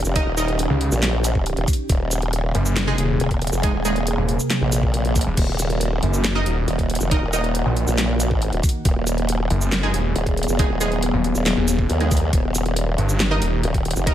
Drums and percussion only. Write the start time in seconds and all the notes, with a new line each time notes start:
0.05 shaker
0.16 kick, closed hi-hat
0.37 closed hi-hat, shaker
0.48 closed hi-hat
0.59 closed hi-hat
0.81 closed hi-hat
0.92 shaker
1.03 snare, clap, closed hi-hat
1.24 closed hi-hat, shaker
1.35 kick
1.46 closed hi-hat
1.57 closed hi-hat
1.68 kick, closed hi-hat, shaker
1.73 closed hi-hat
1.89 kick, closed hi-hat
2.11 closed hi-hat, shaker
2.22 closed hi-hat
2.33 closed hi-hat
2.55 closed hi-hat
2.66 shaker
2.76 snare, clap, closed hi-hat
2.98 closed hi-hat
3.20 closed hi-hat
3.31 kick, closed hi-hat
3.42 closed hi-hat
3.47 closed hi-hat
3.52 shaker
3.63 kick, closed hi-hat
3.85 closed hi-hat, shaker
3.96 closed hi-hat
4.07 closed hi-hat
4.29 closed hi-hat
4.40 shaker
4.50 snare, clap, closed hi-hat
4.72 closed hi-hat, shaker
4.83 kick
4.94 closed hi-hat
5.05 closed hi-hat
5.16 kick, closed hi-hat, shaker
5.21 closed hi-hat
5.37 kick, closed hi-hat, crash
5.59 closed hi-hat, shaker
5.70 closed hi-hat
5.81 closed hi-hat
6.03 closed hi-hat
6.14 shaker
6.24 snare, clap, closed hi-hat
6.46 closed hi-hat
6.68 closed hi-hat
6.79 kick, closed hi-hat
6.90 closed hi-hat
6.95 closed hi-hat
7.01 shaker
7.11 kick, closed hi-hat
7.33 closed hi-hat, shaker
7.44 closed hi-hat
7.55 closed hi-hat
7.77 closed hi-hat
7.87 shaker
7.98 snare, clap, closed hi-hat
8.20 closed hi-hat, shaker
8.31 kick
8.42 closed hi-hat
8.53 closed hi-hat
8.63 kick, closed hi-hat, shaker
8.69 closed hi-hat
8.85 kick, closed hi-hat
9.07 closed hi-hat, shaker
9.18 closed hi-hat
9.29 closed hi-hat
9.50 closed hi-hat
9.61 shaker
9.72 snare, clap, closed hi-hat
9.94 closed hi-hat
10.16 closed hi-hat
10.27 kick, closed hi-hat
10.37 closed hi-hat
10.43 closed hi-hat
10.48 shaker
10.59 kick, closed hi-hat
10.81 closed hi-hat, shaker
10.92 closed hi-hat
11.03 closed hi-hat
11.24 closed hi-hat
11.35 shaker
11.46 snare, clap, closed hi-hat
11.68 closed hi-hat, shaker
11.79 kick
11.90 closed hi-hat
12.00 closed hi-hat
12.11 kick, closed hi-hat, shaker
12.17 closed hi-hat
12.33 kick, closed hi-hat
12.55 closed hi-hat, shaker
12.66 closed hi-hat
12.76 closed hi-hat
12.98 closed hi-hat
13.09 shaker
13.20 snare, clap, closed hi-hat
13.42 closed hi-hat
13.63 closed hi-hat
13.74 kick, closed hi-hat
13.85 closed hi-hat
13.91 closed hi-hat
13.96 shaker
14.07 kick, closed hi-hat